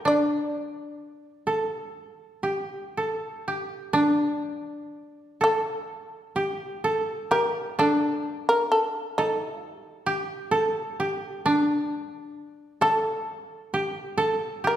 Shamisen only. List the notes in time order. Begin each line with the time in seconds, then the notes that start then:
0.08 D5
5.44 A4
7.31 A#4
7.79 A4
8.49 A#4
8.72 A4
9.18 D#4
9.75 G4
12.82 A4
14.67 A#4